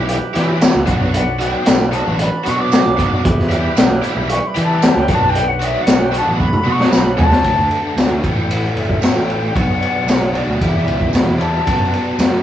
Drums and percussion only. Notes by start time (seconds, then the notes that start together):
0.09 closed hi-hat
0.35 snare, closed hi-hat
0.61 snare, closed hi-hat, tambourine
0.87 kick, closed hi-hat
1.14 closed hi-hat
1.41 closed hi-hat
1.66 snare, closed hi-hat, tambourine
1.93 closed hi-hat
2.19 closed hi-hat
2.46 closed hi-hat
2.72 snare, closed hi-hat, tambourine
2.99 kick, closed hi-hat
3.25 kick, closed hi-hat
3.39 snare
3.51 closed hi-hat
3.77 snare, closed hi-hat, tambourine
4.04 closed hi-hat
4.30 closed hi-hat
4.56 closed hi-hat
4.82 snare, closed hi-hat, tambourine
5.08 kick, closed hi-hat
5.35 closed hi-hat
5.62 closed hi-hat
5.87 snare, closed hi-hat, tambourine
6.14 closed hi-hat
6.40 kick
6.53 high tom
6.80 snare
6.93 snare, tambourine
7.19 floor tom
7.32 snare
7.44 kick, ride
7.71 ride
7.97 snare, ride, tambourine
8.24 kick, ride
8.51 ride
8.77 ride
8.89 kick
9.02 snare, ride, tambourine
9.30 ride
9.56 kick, ride
9.82 ride
10.08 snare, ride, tambourine
10.35 ride
10.61 kick, ride
10.88 ride
11.01 kick
11.13 snare, ride, tambourine
11.41 ride
11.67 kick, ride
11.94 ride
12.19 snare, ride, tambourine